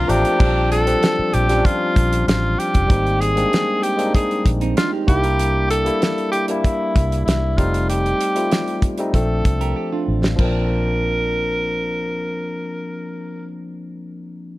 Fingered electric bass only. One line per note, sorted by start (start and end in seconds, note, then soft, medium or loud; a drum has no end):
0.09 0.22 A1 medium
0.41 0.94 A#1 loud
1.19 muted fingered electric bass stroke soft
1.34 1.61 A#1 medium
1.97 2.23 A#1 medium
2.28 2.54 A1 medium
2.75 2.88 F1 medium
2.90 3.43 G#1 loud
4.46 4.73 A#1 medium
5.08 5.88 C2 medium
6.96 7.23 C2 medium
7.27 7.60 C2 medium
7.59 8.12 F1 medium
9.14 9.41 A#1 medium
9.46 9.72 C2 medium
10.08 10.35 A1 medium
10.39 13.48 A#1 loud